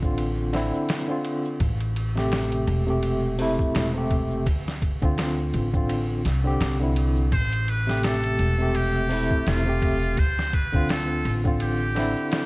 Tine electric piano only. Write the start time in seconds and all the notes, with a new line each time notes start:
0.02 D3 C4 F4
0.52 D3 C4 E4
1.08 D3 C4 F4
2.15 C3 A3 G4
2.87 C3 A3 G4
3.38 C3 A3 E4
3.94 C3 A3 G4
5.02 D3 C4 F4
5.73 D3 C4 F4
6.44 D3 C4 G4
6.80 D3 C4 E4
7.87 C3 A3 G4
8.59 C3 A3 G4
9.09 C3 A3 E4
9.66 C3 A3 G4
10.72 D3 C4 F4
11.43 D3 C4 F4
11.95 D3 C4 E4